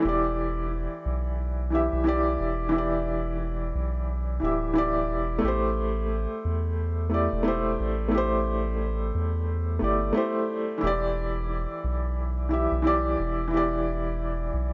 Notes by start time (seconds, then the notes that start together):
0.00 E3 E4
0.04 E1 G4
0.09 D5
1.05 B1
1.70 E3 E4 G4
1.75 E5
1.92 B1
2.04 E3 E4 G4
2.08 D5
2.40 E1
2.69 E3 E4
2.75 G4 D5
3.75 B1
4.40 D1 E3 E4 G4
4.44 E5
4.74 E3 E4 G4
4.78 D5
5.10 E1
5.39 A3 E4
5.43 A1 G4
5.48 C5
6.45 E2
7.09 A3 E4 G4
7.14 D5
7.32 E1
7.43 A3 E4 G4
7.48 C5
7.80 A1
8.08 A3 E4
8.14 G4 C5
9.14 E2
9.79 G1 A3 E4 G4
9.84 D5
10.13 A3 E4 G4
10.17 C5
10.78 E3 E4
10.83 E1 G4
10.87 D5
11.84 B1
12.49 E3 E4 G4
12.54 E5
12.71 B1
12.82 E3 E4 G4
12.87 D5
13.19 E1
13.48 E3 E4
13.54 G4 D5
14.53 B1